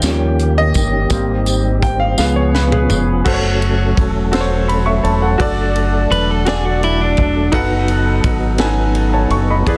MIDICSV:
0, 0, Header, 1, 7, 480
1, 0, Start_track
1, 0, Tempo, 714286
1, 743, Time_signature, 6, 3, 24, 8
1, 6565, End_track
2, 0, Start_track
2, 0, Title_t, "Grand piano"
2, 0, Program_c, 0, 0
2, 0, Control_c, 0, 64, 127
2, 0, Note_on_c, 0, 79, 102
2, 27, Note_on_c, 0, 53, 55
2, 28, Control_c, 0, 64, 0
2, 35, Note_on_c, 0, 55, 52
2, 39, Note_on_c, 0, 61, 63
2, 133, Control_c, 0, 64, 127
2, 358, Note_off_c, 0, 79, 0
2, 389, Note_on_c, 0, 75, 107
2, 719, Note_off_c, 0, 53, 0
2, 723, Note_off_c, 0, 55, 0
2, 725, Note_off_c, 0, 61, 0
2, 738, Note_on_c, 0, 55, 54
2, 741, Note_on_c, 0, 58, 50
2, 746, Note_on_c, 0, 60, 61
2, 752, Control_c, 0, 64, 0
2, 884, Control_c, 0, 64, 127
2, 1060, Note_off_c, 0, 55, 0
2, 1061, Note_off_c, 0, 58, 0
2, 1064, Note_off_c, 0, 60, 0
2, 1080, Note_off_c, 0, 75, 0
2, 1228, Note_on_c, 0, 79, 83
2, 1342, Note_on_c, 0, 77, 82
2, 1349, Note_off_c, 0, 79, 0
2, 1454, Note_off_c, 0, 77, 0
2, 1461, Note_on_c, 0, 53, 58
2, 1465, Note_on_c, 0, 77, 88
2, 1466, Note_on_c, 0, 56, 53
2, 1473, Control_c, 0, 64, 0
2, 1473, Note_on_c, 0, 59, 63
2, 1587, Note_on_c, 0, 73, 78
2, 1588, Note_off_c, 0, 77, 0
2, 1599, Control_c, 0, 64, 127
2, 1709, Note_off_c, 0, 73, 0
2, 1711, Note_on_c, 0, 71, 82
2, 1782, Note_off_c, 0, 53, 0
2, 1784, Note_off_c, 0, 56, 0
2, 1788, Note_off_c, 0, 59, 0
2, 1825, Note_on_c, 0, 68, 73
2, 1831, Note_off_c, 0, 71, 0
2, 2159, Note_off_c, 0, 68, 0
2, 2181, Note_on_c, 0, 66, 80
2, 2188, Note_on_c, 0, 69, 73
2, 2193, Control_c, 0, 64, 0
2, 2200, Note_on_c, 0, 72, 71
2, 2236, Note_off_c, 0, 72, 0
2, 2243, Note_on_c, 0, 73, 84
2, 2298, Control_c, 0, 64, 127
2, 2683, Note_off_c, 0, 66, 0
2, 2687, Note_off_c, 0, 69, 0
2, 2714, Note_off_c, 0, 73, 0
2, 2900, Note_on_c, 0, 66, 80
2, 2908, Note_on_c, 0, 69, 75
2, 2917, Note_on_c, 0, 72, 76
2, 2954, Note_off_c, 0, 72, 0
2, 2960, Note_on_c, 0, 73, 86
2, 3146, Note_off_c, 0, 69, 0
2, 3147, Note_on_c, 0, 83, 67
2, 3172, Note_off_c, 0, 73, 0
2, 3259, Note_off_c, 0, 83, 0
2, 3264, Note_on_c, 0, 85, 72
2, 3269, Note_on_c, 0, 76, 62
2, 3378, Note_off_c, 0, 85, 0
2, 3380, Note_off_c, 0, 76, 0
2, 3384, Note_on_c, 0, 81, 64
2, 3388, Note_on_c, 0, 73, 59
2, 3403, Note_off_c, 0, 66, 0
2, 3498, Note_off_c, 0, 81, 0
2, 3500, Note_off_c, 0, 73, 0
2, 3508, Note_on_c, 0, 78, 62
2, 3512, Note_on_c, 0, 69, 47
2, 3614, Note_off_c, 0, 69, 0
2, 3615, Note_on_c, 0, 66, 91
2, 3625, Note_on_c, 0, 69, 84
2, 3631, Control_c, 0, 64, 0
2, 3636, Note_on_c, 0, 74, 104
2, 3734, Note_off_c, 0, 78, 0
2, 3746, Control_c, 0, 64, 127
2, 4120, Note_off_c, 0, 66, 0
2, 4124, Note_off_c, 0, 69, 0
2, 4130, Note_off_c, 0, 74, 0
2, 4336, Note_on_c, 0, 66, 80
2, 4347, Note_on_c, 0, 69, 74
2, 4356, Note_on_c, 0, 74, 100
2, 4839, Note_off_c, 0, 66, 0
2, 4845, Note_off_c, 0, 69, 0
2, 4849, Note_off_c, 0, 74, 0
2, 5052, Note_on_c, 0, 63, 98
2, 5059, Note_on_c, 0, 66, 93
2, 5059, Note_on_c, 0, 69, 97
2, 5063, Note_on_c, 0, 71, 88
2, 5068, Control_c, 0, 64, 0
2, 5068, Note_on_c, 0, 78, 113
2, 5200, Control_c, 0, 64, 127
2, 5556, Note_off_c, 0, 63, 0
2, 5560, Note_off_c, 0, 66, 0
2, 5560, Note_off_c, 0, 69, 0
2, 5562, Note_off_c, 0, 71, 0
2, 5564, Note_off_c, 0, 78, 0
2, 5766, Note_on_c, 0, 61, 66
2, 5769, Note_on_c, 0, 66, 76
2, 5774, Note_on_c, 0, 69, 76
2, 5777, Note_on_c, 0, 71, 79
2, 5780, Note_on_c, 0, 80, 96
2, 5809, Note_on_c, 0, 63, 91
2, 5816, Note_off_c, 0, 61, 0
2, 6019, Note_off_c, 0, 80, 0
2, 6136, Note_on_c, 0, 81, 63
2, 6140, Note_on_c, 0, 73, 56
2, 6251, Note_off_c, 0, 81, 0
2, 6253, Note_off_c, 0, 73, 0
2, 6257, Note_on_c, 0, 85, 75
2, 6274, Note_off_c, 0, 66, 0
2, 6276, Note_off_c, 0, 69, 0
2, 6278, Note_off_c, 0, 71, 0
2, 6294, Note_off_c, 0, 63, 0
2, 6371, Note_off_c, 0, 85, 0
2, 6386, Note_on_c, 0, 83, 67
2, 6387, Note_on_c, 0, 75, 52
2, 6496, Note_on_c, 0, 68, 95
2, 6500, Note_on_c, 0, 52, 79
2, 6503, Note_on_c, 0, 71, 88
2, 6507, Control_c, 0, 64, 0
2, 6509, Note_on_c, 0, 74, 79
2, 6547, Note_off_c, 0, 74, 0
2, 6565, Note_off_c, 0, 52, 0
2, 6565, Note_off_c, 0, 68, 0
2, 6565, Note_off_c, 0, 71, 0
2, 6565, Note_off_c, 0, 75, 0
2, 6565, Note_off_c, 0, 83, 0
2, 6565, End_track
3, 0, Start_track
3, 0, Title_t, "Clean electric guitar"
3, 0, Program_c, 1, 27
3, 4109, Note_on_c, 1, 71, 74
3, 4240, Note_off_c, 1, 71, 0
3, 4240, Note_on_c, 1, 69, 86
3, 4345, Note_off_c, 1, 69, 0
3, 4351, Note_on_c, 1, 68, 88
3, 4471, Note_off_c, 1, 68, 0
3, 4471, Note_on_c, 1, 66, 92
3, 4581, Note_off_c, 1, 66, 0
3, 4595, Note_on_c, 1, 64, 87
3, 4703, Note_off_c, 1, 64, 0
3, 4712, Note_on_c, 1, 62, 70
3, 5048, Note_off_c, 1, 62, 0
3, 6565, End_track
4, 0, Start_track
4, 0, Title_t, "French horn section"
4, 0, Program_c, 2, 60
4, 18, Note_on_c, 2, 70, 64
4, 20, Note_on_c, 2, 67, 65
4, 23, Note_on_c, 2, 63, 67
4, 25, Note_on_c, 2, 73, 80
4, 730, Note_off_c, 2, 63, 0
4, 734, Note_off_c, 2, 70, 0
4, 737, Note_off_c, 2, 73, 0
4, 738, Note_on_c, 2, 63, 70
4, 741, Note_on_c, 2, 72, 75
4, 1448, Note_off_c, 2, 67, 0
4, 1454, Note_off_c, 2, 63, 0
4, 1455, Note_off_c, 2, 72, 0
4, 1462, Note_on_c, 2, 61, 68
4, 1463, Note_on_c, 2, 65, 60
4, 1464, Note_on_c, 2, 71, 80
4, 2176, Note_off_c, 2, 61, 0
4, 2176, Note_off_c, 2, 65, 0
4, 2177, Note_off_c, 2, 71, 0
4, 6565, End_track
5, 0, Start_track
5, 0, Title_t, "Tonewheel organ"
5, 0, Program_c, 3, 16
5, 0, Note_on_c, 3, 51, 57
5, 26, Note_on_c, 3, 61, 58
5, 29, Note_on_c, 3, 58, 58
5, 30, Note_on_c, 3, 67, 72
5, 738, Note_off_c, 3, 61, 0
5, 739, Note_off_c, 3, 58, 0
5, 753, Note_on_c, 3, 55, 56
5, 754, Note_on_c, 3, 60, 53
5, 1441, Note_off_c, 3, 51, 0
5, 1453, Note_off_c, 3, 67, 0
5, 1461, Note_off_c, 3, 55, 0
5, 1462, Note_off_c, 3, 60, 0
5, 1464, Note_on_c, 3, 61, 57
5, 1468, Note_on_c, 3, 53, 64
5, 1468, Note_on_c, 3, 59, 65
5, 1472, Note_on_c, 3, 68, 71
5, 2177, Note_off_c, 3, 61, 0
5, 2179, Note_off_c, 3, 53, 0
5, 2179, Note_off_c, 3, 59, 0
5, 2181, Note_off_c, 3, 68, 0
5, 2182, Note_on_c, 3, 69, 68
5, 2186, Note_on_c, 3, 61, 56
5, 2190, Note_on_c, 3, 54, 57
5, 2193, Note_on_c, 3, 57, 58
5, 3610, Note_off_c, 3, 61, 0
5, 3620, Note_on_c, 3, 62, 56
5, 5038, Note_off_c, 3, 57, 0
5, 5045, Note_off_c, 3, 62, 0
5, 5070, Note_on_c, 3, 63, 61
5, 5074, Note_on_c, 3, 59, 62
5, 6469, Note_off_c, 3, 69, 0
5, 6473, Note_off_c, 3, 54, 0
5, 6487, Note_off_c, 3, 63, 0
5, 6496, Note_on_c, 3, 52, 65
5, 6502, Note_on_c, 3, 68, 76
5, 6503, Note_on_c, 3, 56, 57
5, 6565, Note_off_c, 3, 52, 0
5, 6565, Note_off_c, 3, 56, 0
5, 6565, Note_off_c, 3, 59, 0
5, 6565, Note_off_c, 3, 68, 0
5, 6565, End_track
6, 0, Start_track
6, 0, Title_t, "Fingered electric bass"
6, 0, Program_c, 4, 33
6, 19, Note_on_c, 4, 39, 95
6, 474, Note_off_c, 4, 39, 0
6, 507, Note_on_c, 4, 31, 80
6, 726, Note_off_c, 4, 31, 0
6, 739, Note_on_c, 4, 32, 96
6, 1435, Note_off_c, 4, 32, 0
6, 1468, Note_on_c, 4, 37, 99
6, 1919, Note_off_c, 4, 37, 0
6, 1952, Note_on_c, 4, 29, 90
6, 2169, Note_off_c, 4, 29, 0
6, 2190, Note_on_c, 4, 30, 96
6, 2640, Note_off_c, 4, 30, 0
6, 2670, Note_on_c, 4, 28, 80
6, 3360, Note_off_c, 4, 28, 0
6, 3385, Note_on_c, 4, 28, 88
6, 3605, Note_off_c, 4, 28, 0
6, 3625, Note_on_c, 4, 30, 85
6, 4076, Note_off_c, 4, 30, 0
6, 4101, Note_on_c, 4, 28, 96
6, 4794, Note_off_c, 4, 28, 0
6, 4827, Note_on_c, 4, 28, 99
6, 5045, Note_off_c, 4, 28, 0
6, 5059, Note_on_c, 4, 30, 101
6, 5512, Note_off_c, 4, 30, 0
6, 5536, Note_on_c, 4, 32, 89
6, 6229, Note_off_c, 4, 32, 0
6, 6249, Note_on_c, 4, 30, 86
6, 6473, Note_off_c, 4, 30, 0
6, 6495, Note_on_c, 4, 28, 104
6, 6565, Note_off_c, 4, 28, 0
6, 6565, End_track
7, 0, Start_track
7, 0, Title_t, "Drums"
7, 12, Note_on_c, 9, 54, 85
7, 17, Note_on_c, 9, 42, 79
7, 27, Note_on_c, 9, 38, 90
7, 80, Note_off_c, 9, 54, 0
7, 84, Note_off_c, 9, 42, 0
7, 94, Note_off_c, 9, 38, 0
7, 264, Note_on_c, 9, 42, 49
7, 331, Note_off_c, 9, 42, 0
7, 498, Note_on_c, 9, 54, 46
7, 501, Note_on_c, 9, 42, 43
7, 507, Note_on_c, 9, 36, 69
7, 566, Note_off_c, 9, 54, 0
7, 568, Note_off_c, 9, 42, 0
7, 574, Note_off_c, 9, 36, 0
7, 738, Note_on_c, 9, 54, 52
7, 742, Note_on_c, 9, 36, 91
7, 742, Note_on_c, 9, 42, 81
7, 805, Note_off_c, 9, 54, 0
7, 809, Note_off_c, 9, 36, 0
7, 809, Note_off_c, 9, 42, 0
7, 982, Note_on_c, 9, 42, 54
7, 987, Note_on_c, 9, 54, 50
7, 1049, Note_off_c, 9, 42, 0
7, 1054, Note_off_c, 9, 54, 0
7, 1226, Note_on_c, 9, 36, 94
7, 1231, Note_on_c, 9, 42, 58
7, 1294, Note_off_c, 9, 36, 0
7, 1298, Note_off_c, 9, 42, 0
7, 1464, Note_on_c, 9, 54, 85
7, 1473, Note_on_c, 9, 38, 52
7, 1531, Note_off_c, 9, 54, 0
7, 1540, Note_off_c, 9, 38, 0
7, 1712, Note_on_c, 9, 38, 71
7, 1779, Note_off_c, 9, 38, 0
7, 1830, Note_on_c, 9, 45, 73
7, 1897, Note_off_c, 9, 45, 0
7, 1947, Note_on_c, 9, 43, 80
7, 1951, Note_on_c, 9, 54, 46
7, 2014, Note_off_c, 9, 43, 0
7, 2018, Note_off_c, 9, 54, 0
7, 2189, Note_on_c, 9, 36, 96
7, 2193, Note_on_c, 9, 49, 95
7, 2256, Note_off_c, 9, 36, 0
7, 2260, Note_off_c, 9, 49, 0
7, 2433, Note_on_c, 9, 51, 41
7, 2500, Note_off_c, 9, 51, 0
7, 2670, Note_on_c, 9, 36, 102
7, 2675, Note_on_c, 9, 51, 48
7, 2738, Note_off_c, 9, 36, 0
7, 2742, Note_off_c, 9, 51, 0
7, 2908, Note_on_c, 9, 51, 70
7, 2918, Note_on_c, 9, 38, 104
7, 2975, Note_off_c, 9, 51, 0
7, 2985, Note_off_c, 9, 38, 0
7, 3154, Note_on_c, 9, 51, 45
7, 3221, Note_off_c, 9, 51, 0
7, 3391, Note_on_c, 9, 51, 41
7, 3458, Note_off_c, 9, 51, 0
7, 3627, Note_on_c, 9, 36, 98
7, 3630, Note_on_c, 9, 51, 70
7, 3695, Note_off_c, 9, 36, 0
7, 3697, Note_off_c, 9, 51, 0
7, 3868, Note_on_c, 9, 51, 44
7, 3935, Note_off_c, 9, 51, 0
7, 4113, Note_on_c, 9, 51, 49
7, 4180, Note_off_c, 9, 51, 0
7, 4343, Note_on_c, 9, 51, 69
7, 4353, Note_on_c, 9, 38, 102
7, 4410, Note_off_c, 9, 51, 0
7, 4420, Note_off_c, 9, 38, 0
7, 4589, Note_on_c, 9, 51, 44
7, 4656, Note_off_c, 9, 51, 0
7, 4818, Note_on_c, 9, 51, 38
7, 4825, Note_on_c, 9, 36, 68
7, 4885, Note_off_c, 9, 51, 0
7, 4892, Note_off_c, 9, 36, 0
7, 5055, Note_on_c, 9, 51, 75
7, 5059, Note_on_c, 9, 36, 96
7, 5123, Note_off_c, 9, 51, 0
7, 5126, Note_off_c, 9, 36, 0
7, 5296, Note_on_c, 9, 51, 49
7, 5363, Note_off_c, 9, 51, 0
7, 5537, Note_on_c, 9, 36, 109
7, 5540, Note_on_c, 9, 51, 51
7, 5604, Note_off_c, 9, 36, 0
7, 5607, Note_off_c, 9, 51, 0
7, 5767, Note_on_c, 9, 51, 66
7, 5777, Note_on_c, 9, 38, 95
7, 5834, Note_off_c, 9, 51, 0
7, 5844, Note_off_c, 9, 38, 0
7, 6013, Note_on_c, 9, 51, 44
7, 6080, Note_off_c, 9, 51, 0
7, 6252, Note_on_c, 9, 51, 40
7, 6319, Note_off_c, 9, 51, 0
7, 6496, Note_on_c, 9, 36, 98
7, 6499, Note_on_c, 9, 51, 71
7, 6563, Note_off_c, 9, 36, 0
7, 6565, Note_off_c, 9, 51, 0
7, 6565, End_track
0, 0, End_of_file